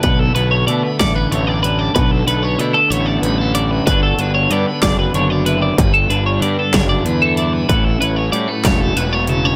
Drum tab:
HH |xxxxxx|xxxxxx|xxxxxx|xxxxxx|
SD |---o--|------|---o--|---o--|
BD |o--o--|o-----|o--o--|o--o--|

HH |xxxxxx|
SD |---o--|
BD |o--o--|